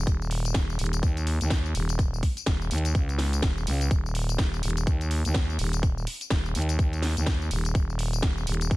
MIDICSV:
0, 0, Header, 1, 3, 480
1, 0, Start_track
1, 0, Tempo, 480000
1, 70, Time_signature, 4, 2, 24, 8
1, 8766, End_track
2, 0, Start_track
2, 0, Title_t, "FM bass"
2, 0, Program_c, 0, 39
2, 69, Note_on_c, 0, 27, 96
2, 533, Note_off_c, 0, 27, 0
2, 789, Note_on_c, 0, 27, 99
2, 1013, Note_off_c, 0, 27, 0
2, 1028, Note_on_c, 0, 39, 100
2, 1388, Note_off_c, 0, 39, 0
2, 1410, Note_on_c, 0, 39, 99
2, 1733, Note_off_c, 0, 39, 0
2, 1748, Note_on_c, 0, 27, 100
2, 2213, Note_off_c, 0, 27, 0
2, 2469, Note_on_c, 0, 27, 99
2, 2693, Note_off_c, 0, 27, 0
2, 2709, Note_on_c, 0, 39, 98
2, 2933, Note_off_c, 0, 39, 0
2, 2949, Note_on_c, 0, 37, 99
2, 3413, Note_off_c, 0, 37, 0
2, 3428, Note_on_c, 0, 27, 98
2, 3653, Note_off_c, 0, 27, 0
2, 3669, Note_on_c, 0, 37, 100
2, 3893, Note_off_c, 0, 37, 0
2, 3909, Note_on_c, 0, 27, 98
2, 4373, Note_off_c, 0, 27, 0
2, 4389, Note_on_c, 0, 27, 99
2, 4613, Note_off_c, 0, 27, 0
2, 4629, Note_on_c, 0, 27, 98
2, 4854, Note_off_c, 0, 27, 0
2, 4870, Note_on_c, 0, 39, 97
2, 5228, Note_off_c, 0, 39, 0
2, 5251, Note_on_c, 0, 39, 99
2, 5574, Note_off_c, 0, 39, 0
2, 5589, Note_on_c, 0, 27, 102
2, 6054, Note_off_c, 0, 27, 0
2, 6309, Note_on_c, 0, 27, 101
2, 6534, Note_off_c, 0, 27, 0
2, 6549, Note_on_c, 0, 39, 101
2, 6774, Note_off_c, 0, 39, 0
2, 7170, Note_on_c, 0, 39, 100
2, 7494, Note_off_c, 0, 39, 0
2, 7509, Note_on_c, 0, 27, 102
2, 7734, Note_off_c, 0, 27, 0
2, 7749, Note_on_c, 0, 27, 96
2, 8214, Note_off_c, 0, 27, 0
2, 8469, Note_on_c, 0, 27, 100
2, 8693, Note_off_c, 0, 27, 0
2, 8709, Note_on_c, 0, 39, 101
2, 8766, Note_off_c, 0, 39, 0
2, 8766, End_track
3, 0, Start_track
3, 0, Title_t, "Drums"
3, 69, Note_on_c, 9, 36, 112
3, 69, Note_on_c, 9, 42, 69
3, 76, Note_on_c, 9, 54, 61
3, 169, Note_off_c, 9, 36, 0
3, 169, Note_off_c, 9, 42, 0
3, 176, Note_off_c, 9, 54, 0
3, 217, Note_on_c, 9, 54, 35
3, 309, Note_on_c, 9, 46, 98
3, 317, Note_off_c, 9, 54, 0
3, 409, Note_off_c, 9, 46, 0
3, 450, Note_on_c, 9, 42, 55
3, 457, Note_on_c, 9, 54, 70
3, 544, Note_on_c, 9, 38, 113
3, 549, Note_off_c, 9, 42, 0
3, 549, Note_on_c, 9, 36, 113
3, 549, Note_on_c, 9, 42, 70
3, 557, Note_off_c, 9, 54, 0
3, 644, Note_off_c, 9, 38, 0
3, 649, Note_off_c, 9, 36, 0
3, 649, Note_off_c, 9, 42, 0
3, 698, Note_on_c, 9, 54, 38
3, 789, Note_on_c, 9, 46, 91
3, 798, Note_off_c, 9, 54, 0
3, 860, Note_on_c, 9, 42, 67
3, 889, Note_off_c, 9, 46, 0
3, 930, Note_off_c, 9, 42, 0
3, 930, Note_on_c, 9, 42, 56
3, 937, Note_on_c, 9, 54, 74
3, 1029, Note_off_c, 9, 42, 0
3, 1029, Note_on_c, 9, 36, 116
3, 1029, Note_on_c, 9, 42, 68
3, 1036, Note_off_c, 9, 54, 0
3, 1036, Note_on_c, 9, 54, 58
3, 1129, Note_off_c, 9, 36, 0
3, 1129, Note_off_c, 9, 42, 0
3, 1136, Note_off_c, 9, 54, 0
3, 1170, Note_on_c, 9, 42, 38
3, 1177, Note_on_c, 9, 54, 35
3, 1268, Note_on_c, 9, 46, 101
3, 1270, Note_off_c, 9, 42, 0
3, 1277, Note_off_c, 9, 54, 0
3, 1368, Note_off_c, 9, 46, 0
3, 1409, Note_on_c, 9, 42, 53
3, 1417, Note_on_c, 9, 54, 69
3, 1504, Note_on_c, 9, 38, 118
3, 1509, Note_off_c, 9, 42, 0
3, 1509, Note_on_c, 9, 36, 113
3, 1509, Note_on_c, 9, 42, 71
3, 1516, Note_off_c, 9, 54, 0
3, 1516, Note_on_c, 9, 54, 61
3, 1604, Note_off_c, 9, 38, 0
3, 1609, Note_off_c, 9, 36, 0
3, 1609, Note_off_c, 9, 42, 0
3, 1616, Note_off_c, 9, 54, 0
3, 1657, Note_on_c, 9, 54, 36
3, 1748, Note_on_c, 9, 46, 91
3, 1757, Note_off_c, 9, 54, 0
3, 1848, Note_off_c, 9, 46, 0
3, 1890, Note_on_c, 9, 42, 53
3, 1898, Note_on_c, 9, 54, 72
3, 1989, Note_off_c, 9, 42, 0
3, 1989, Note_on_c, 9, 36, 116
3, 1989, Note_on_c, 9, 42, 71
3, 1996, Note_off_c, 9, 54, 0
3, 1996, Note_on_c, 9, 54, 58
3, 2089, Note_off_c, 9, 36, 0
3, 2089, Note_off_c, 9, 42, 0
3, 2096, Note_off_c, 9, 54, 0
3, 2138, Note_on_c, 9, 54, 35
3, 2229, Note_on_c, 9, 36, 61
3, 2229, Note_on_c, 9, 46, 102
3, 2238, Note_off_c, 9, 54, 0
3, 2329, Note_off_c, 9, 36, 0
3, 2329, Note_off_c, 9, 46, 0
3, 2370, Note_on_c, 9, 42, 55
3, 2377, Note_on_c, 9, 54, 68
3, 2464, Note_on_c, 9, 38, 119
3, 2469, Note_off_c, 9, 42, 0
3, 2469, Note_on_c, 9, 36, 118
3, 2469, Note_on_c, 9, 42, 67
3, 2476, Note_off_c, 9, 54, 0
3, 2476, Note_on_c, 9, 54, 56
3, 2564, Note_off_c, 9, 38, 0
3, 2569, Note_off_c, 9, 36, 0
3, 2569, Note_off_c, 9, 42, 0
3, 2576, Note_off_c, 9, 54, 0
3, 2618, Note_on_c, 9, 54, 36
3, 2709, Note_on_c, 9, 46, 92
3, 2718, Note_off_c, 9, 54, 0
3, 2780, Note_on_c, 9, 42, 69
3, 2809, Note_off_c, 9, 46, 0
3, 2850, Note_off_c, 9, 42, 0
3, 2850, Note_on_c, 9, 42, 57
3, 2857, Note_on_c, 9, 54, 70
3, 2949, Note_off_c, 9, 42, 0
3, 2949, Note_on_c, 9, 36, 114
3, 2949, Note_on_c, 9, 42, 68
3, 2956, Note_off_c, 9, 54, 0
3, 2956, Note_on_c, 9, 54, 55
3, 3049, Note_off_c, 9, 36, 0
3, 3049, Note_off_c, 9, 42, 0
3, 3056, Note_off_c, 9, 54, 0
3, 3091, Note_on_c, 9, 42, 39
3, 3098, Note_on_c, 9, 54, 34
3, 3184, Note_on_c, 9, 38, 63
3, 3190, Note_on_c, 9, 46, 99
3, 3191, Note_off_c, 9, 42, 0
3, 3198, Note_off_c, 9, 54, 0
3, 3284, Note_off_c, 9, 38, 0
3, 3290, Note_off_c, 9, 46, 0
3, 3331, Note_on_c, 9, 42, 54
3, 3338, Note_on_c, 9, 54, 69
3, 3424, Note_on_c, 9, 38, 121
3, 3429, Note_on_c, 9, 36, 116
3, 3430, Note_off_c, 9, 42, 0
3, 3430, Note_on_c, 9, 42, 71
3, 3437, Note_off_c, 9, 54, 0
3, 3437, Note_on_c, 9, 54, 58
3, 3524, Note_off_c, 9, 38, 0
3, 3529, Note_off_c, 9, 36, 0
3, 3530, Note_off_c, 9, 42, 0
3, 3537, Note_off_c, 9, 54, 0
3, 3578, Note_on_c, 9, 54, 33
3, 3670, Note_on_c, 9, 46, 94
3, 3678, Note_off_c, 9, 54, 0
3, 3770, Note_off_c, 9, 46, 0
3, 3811, Note_on_c, 9, 42, 56
3, 3818, Note_on_c, 9, 54, 72
3, 3909, Note_on_c, 9, 36, 119
3, 3910, Note_off_c, 9, 42, 0
3, 3910, Note_on_c, 9, 42, 72
3, 3917, Note_off_c, 9, 54, 0
3, 3917, Note_on_c, 9, 54, 60
3, 4009, Note_off_c, 9, 36, 0
3, 4010, Note_off_c, 9, 42, 0
3, 4017, Note_off_c, 9, 54, 0
3, 4058, Note_on_c, 9, 54, 33
3, 4150, Note_on_c, 9, 46, 104
3, 4158, Note_off_c, 9, 54, 0
3, 4250, Note_off_c, 9, 46, 0
3, 4291, Note_on_c, 9, 42, 54
3, 4298, Note_on_c, 9, 54, 68
3, 4384, Note_on_c, 9, 38, 124
3, 4389, Note_off_c, 9, 42, 0
3, 4389, Note_on_c, 9, 36, 118
3, 4389, Note_on_c, 9, 42, 69
3, 4396, Note_off_c, 9, 54, 0
3, 4396, Note_on_c, 9, 54, 55
3, 4484, Note_off_c, 9, 38, 0
3, 4489, Note_off_c, 9, 36, 0
3, 4489, Note_off_c, 9, 42, 0
3, 4496, Note_off_c, 9, 54, 0
3, 4538, Note_on_c, 9, 54, 35
3, 4629, Note_on_c, 9, 46, 97
3, 4638, Note_off_c, 9, 54, 0
3, 4699, Note_on_c, 9, 42, 69
3, 4729, Note_off_c, 9, 46, 0
3, 4770, Note_off_c, 9, 42, 0
3, 4770, Note_on_c, 9, 42, 57
3, 4778, Note_on_c, 9, 54, 68
3, 4869, Note_off_c, 9, 42, 0
3, 4869, Note_on_c, 9, 36, 115
3, 4869, Note_on_c, 9, 42, 66
3, 4876, Note_off_c, 9, 54, 0
3, 4876, Note_on_c, 9, 54, 55
3, 4969, Note_off_c, 9, 36, 0
3, 4969, Note_off_c, 9, 42, 0
3, 4976, Note_off_c, 9, 54, 0
3, 5010, Note_on_c, 9, 42, 39
3, 5017, Note_on_c, 9, 54, 34
3, 5109, Note_on_c, 9, 46, 108
3, 5110, Note_off_c, 9, 42, 0
3, 5117, Note_off_c, 9, 54, 0
3, 5209, Note_off_c, 9, 46, 0
3, 5250, Note_on_c, 9, 42, 53
3, 5258, Note_on_c, 9, 54, 66
3, 5344, Note_on_c, 9, 38, 127
3, 5349, Note_off_c, 9, 42, 0
3, 5349, Note_on_c, 9, 36, 116
3, 5349, Note_on_c, 9, 42, 72
3, 5358, Note_off_c, 9, 54, 0
3, 5444, Note_off_c, 9, 38, 0
3, 5449, Note_off_c, 9, 36, 0
3, 5449, Note_off_c, 9, 42, 0
3, 5498, Note_on_c, 9, 54, 32
3, 5589, Note_on_c, 9, 46, 94
3, 5598, Note_off_c, 9, 54, 0
3, 5689, Note_off_c, 9, 46, 0
3, 5731, Note_on_c, 9, 42, 58
3, 5738, Note_on_c, 9, 54, 69
3, 5829, Note_on_c, 9, 36, 122
3, 5830, Note_off_c, 9, 42, 0
3, 5830, Note_on_c, 9, 42, 71
3, 5837, Note_off_c, 9, 54, 0
3, 5837, Note_on_c, 9, 54, 55
3, 5929, Note_off_c, 9, 36, 0
3, 5930, Note_off_c, 9, 42, 0
3, 5937, Note_off_c, 9, 54, 0
3, 5978, Note_on_c, 9, 54, 32
3, 6070, Note_on_c, 9, 46, 110
3, 6078, Note_off_c, 9, 54, 0
3, 6170, Note_off_c, 9, 46, 0
3, 6211, Note_on_c, 9, 42, 52
3, 6218, Note_on_c, 9, 54, 64
3, 6304, Note_on_c, 9, 38, 127
3, 6309, Note_on_c, 9, 36, 124
3, 6310, Note_off_c, 9, 42, 0
3, 6310, Note_on_c, 9, 42, 67
3, 6317, Note_off_c, 9, 54, 0
3, 6317, Note_on_c, 9, 54, 54
3, 6404, Note_off_c, 9, 38, 0
3, 6409, Note_off_c, 9, 36, 0
3, 6410, Note_off_c, 9, 42, 0
3, 6417, Note_off_c, 9, 54, 0
3, 6458, Note_on_c, 9, 54, 33
3, 6550, Note_on_c, 9, 46, 96
3, 6558, Note_off_c, 9, 54, 0
3, 6620, Note_on_c, 9, 42, 67
3, 6650, Note_off_c, 9, 46, 0
3, 6691, Note_off_c, 9, 42, 0
3, 6691, Note_on_c, 9, 42, 56
3, 6698, Note_on_c, 9, 54, 68
3, 6789, Note_on_c, 9, 36, 123
3, 6790, Note_off_c, 9, 42, 0
3, 6790, Note_on_c, 9, 42, 67
3, 6797, Note_off_c, 9, 54, 0
3, 6797, Note_on_c, 9, 54, 53
3, 6889, Note_off_c, 9, 36, 0
3, 6890, Note_off_c, 9, 42, 0
3, 6897, Note_off_c, 9, 54, 0
3, 6931, Note_on_c, 9, 42, 36
3, 6938, Note_on_c, 9, 54, 31
3, 7024, Note_on_c, 9, 38, 63
3, 7029, Note_on_c, 9, 46, 110
3, 7031, Note_off_c, 9, 42, 0
3, 7038, Note_off_c, 9, 54, 0
3, 7124, Note_off_c, 9, 38, 0
3, 7129, Note_off_c, 9, 46, 0
3, 7170, Note_on_c, 9, 42, 54
3, 7178, Note_on_c, 9, 54, 65
3, 7264, Note_on_c, 9, 38, 126
3, 7269, Note_off_c, 9, 42, 0
3, 7269, Note_on_c, 9, 36, 122
3, 7269, Note_on_c, 9, 42, 67
3, 7276, Note_off_c, 9, 54, 0
3, 7276, Note_on_c, 9, 54, 56
3, 7364, Note_off_c, 9, 38, 0
3, 7369, Note_off_c, 9, 36, 0
3, 7369, Note_off_c, 9, 42, 0
3, 7376, Note_off_c, 9, 54, 0
3, 7418, Note_on_c, 9, 54, 32
3, 7509, Note_on_c, 9, 46, 96
3, 7518, Note_off_c, 9, 54, 0
3, 7609, Note_off_c, 9, 46, 0
3, 7650, Note_on_c, 9, 42, 54
3, 7658, Note_on_c, 9, 54, 66
3, 7749, Note_off_c, 9, 42, 0
3, 7749, Note_on_c, 9, 36, 124
3, 7749, Note_on_c, 9, 42, 67
3, 7756, Note_off_c, 9, 54, 0
3, 7756, Note_on_c, 9, 54, 56
3, 7849, Note_off_c, 9, 36, 0
3, 7849, Note_off_c, 9, 42, 0
3, 7856, Note_off_c, 9, 54, 0
3, 7898, Note_on_c, 9, 54, 32
3, 7989, Note_on_c, 9, 46, 108
3, 7998, Note_off_c, 9, 54, 0
3, 8089, Note_off_c, 9, 46, 0
3, 8131, Note_on_c, 9, 42, 52
3, 8139, Note_on_c, 9, 54, 64
3, 8225, Note_on_c, 9, 38, 123
3, 8229, Note_on_c, 9, 36, 125
3, 8230, Note_off_c, 9, 42, 0
3, 8230, Note_on_c, 9, 42, 64
3, 8238, Note_off_c, 9, 54, 0
3, 8324, Note_off_c, 9, 38, 0
3, 8329, Note_off_c, 9, 36, 0
3, 8330, Note_off_c, 9, 42, 0
3, 8378, Note_on_c, 9, 54, 34
3, 8470, Note_on_c, 9, 46, 100
3, 8478, Note_off_c, 9, 54, 0
3, 8540, Note_on_c, 9, 42, 65
3, 8570, Note_off_c, 9, 46, 0
3, 8611, Note_off_c, 9, 42, 0
3, 8611, Note_on_c, 9, 42, 53
3, 8618, Note_on_c, 9, 54, 66
3, 8709, Note_on_c, 9, 36, 127
3, 8710, Note_off_c, 9, 42, 0
3, 8710, Note_on_c, 9, 42, 66
3, 8717, Note_off_c, 9, 54, 0
3, 8717, Note_on_c, 9, 54, 52
3, 8766, Note_off_c, 9, 36, 0
3, 8766, Note_off_c, 9, 42, 0
3, 8766, Note_off_c, 9, 54, 0
3, 8766, End_track
0, 0, End_of_file